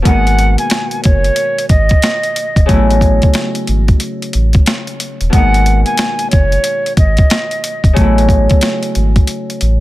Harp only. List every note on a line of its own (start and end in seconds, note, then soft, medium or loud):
0.00 2.74 B2 medium
0.00 0.10 C#3 medium
0.00 0.10 F#3 medium
0.00 0.12 A3 medium
0.00 0.14 B3 medium
0.00 0.10 E4 medium
0.04 2.74 D#3 medium
0.04 2.74 G#3 medium
0.04 2.76 A#3 medium
0.10 2.80 D#4 medium
2.66 5.38 C#3 medium
2.66 5.38 F#3 medium
2.66 5.40 A3 medium
2.72 5.42 B3 medium
2.72 5.38 E4 medium
5.30 8.02 B2 medium
5.30 8.02 D#3 medium
5.30 8.02 G#3 medium
5.36 8.03 A#3 medium
5.36 8.07 D#4 medium
7.93 9.80 C#3 medium
7.93 9.80 F#3 medium
7.93 9.80 A3 medium
7.99 9.80 B3 medium
7.99 9.80 E4 medium